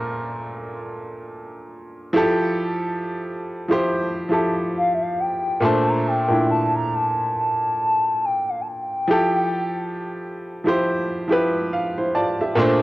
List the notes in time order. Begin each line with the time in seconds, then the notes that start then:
Already playing: A#2 A3 D4 A4 A#4 C5
2.13 F3 E4 G4
2.17 A4
3.68 F3 E4 G4 C5
4.29 F3 E4 G4
4.33 A4
4.77 F5
4.95 E5
5.02 F5
5.20 G5
5.61 A#2 A3 D4 A5
5.65 C5
5.89 A#5
6.07 G5
6.28 A#2 A3 D4 E4
6.51 A5
6.76 A#5
6.94 A5
7.38 A5
8.25 G5
8.49 F5
8.61 A5
8.68 G5
9.08 F3 E4 G4
9.12 A4
10.64 F3 E4 G4
10.68 C5
11.28 F3 E4 G4
11.32 B4
11.73 F5
11.98 E4 C5
12.15 F4 D5 A5
12.41 G4 E5
12.55 A#2 A3 D4
12.60 C5